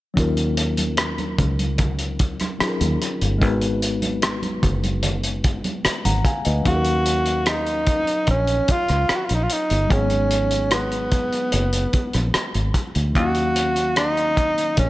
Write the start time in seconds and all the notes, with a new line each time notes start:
0.14 D#2 F#3 C#4 D#4, kick, closed hi-hat
0.19 F4 A#4
0.37 closed hi-hat
0.57 closed hi-hat, muted conga
0.77 closed hi-hat, high conga
0.97 cross-stick, closed hi-hat, muted conga
1.18 closed hi-hat, high conga
1.39 C#2, kick, closed hi-hat, low conga
1.59 closed hi-hat, high conga
1.78 kick, closed hi-hat, muted conga, low conga
1.99 closed hi-hat
2.19 kick, closed hi-hat, muted conga
2.40 cross-stick, closed hi-hat, high conga
2.59 F#3 C#4 D#4 F4 G#4, muted fingered electric bass stroke, cross-stick, closed hi-hat, muted conga
2.69 A#4
2.81 D#2, closed hi-hat, high conga, low conga
3.02 cross-stick, closed hi-hat
3.21 G1, closed hi-hat
3.38 G#1 G#3 B3 D#4, kick, closed hi-hat
3.43 F#4 B4
3.62 closed hi-hat
3.82 closed hi-hat
4.02 closed hi-hat, high conga
4.22 cross-stick, closed hi-hat, muted conga
4.43 closed hi-hat, high conga
4.63 F#1, kick, closed hi-hat, muted conga, low conga
4.83 closed hi-hat, high conga
5.03 closed hi-hat, low conga
5.24 closed hi-hat
5.44 kick, closed hi-hat, muted conga
5.64 closed hi-hat, high conga
5.84 muted fingered electric bass stroke, cross-stick, closed hi-hat, muted conga
6.05 G#1 F#5 A#5, closed hi-hat, high conga, low conga
6.25 F5 G#5, kick, cross-stick, closed hi-hat, muted conga
6.45 D2 B4 D#5, closed hi-hat
6.63 D#2 F#3 C#4 D#4, kick, closed hi-hat
6.67 F#4 G#4 F5
6.75 A#4
6.85 closed hi-hat
7.06 closed hi-hat
7.26 closed hi-hat
7.46 D#4, cross-stick, closed hi-hat
7.67 closed hi-hat
7.87 kick, closed hi-hat
8.07 closed hi-hat
8.27 A#1 C#4, kick, closed hi-hat
8.47 closed hi-hat
8.68 F4, kick, closed hi-hat
8.88 C#2, cross-stick, closed hi-hat
9.09 muted fingered electric bass stroke, cross-stick, closed hi-hat
9.16 F#4
9.25 F4, closed hi-hat
9.31 A#1 D#4
9.43 F4
9.50 D#4, closed hi-hat
9.70 G1, closed hi-hat
9.87 G#1 F#3 G#3 B3, kick, closed hi-hat
9.92 C#4 D#4 G#4
10.10 closed hi-hat
10.31 closed hi-hat
10.51 closed hi-hat
10.71 B3, cross-stick, closed hi-hat
10.92 closed hi-hat
11.12 kick, closed hi-hat
11.33 closed hi-hat
11.52 F#1, closed hi-hat
11.73 closed hi-hat
11.93 kick, closed hi-hat
12.13 A#1, cross-stick, closed hi-hat
12.34 cross-stick, closed hi-hat
12.55 G#1, closed hi-hat
12.74 kick, cross-stick, closed hi-hat
12.95 D2, closed hi-hat
13.13 D#2 D#3 F#3 A#3 F#4, kick, closed hi-hat
13.17 C#4 E4
13.25 F5
13.35 closed hi-hat
13.56 closed hi-hat
13.76 closed hi-hat
13.96 D#4, cross-stick, closed hi-hat
14.17 closed hi-hat
14.37 kick, closed hi-hat
14.58 closed hi-hat
14.77 A#1 C#4, kick, closed hi-hat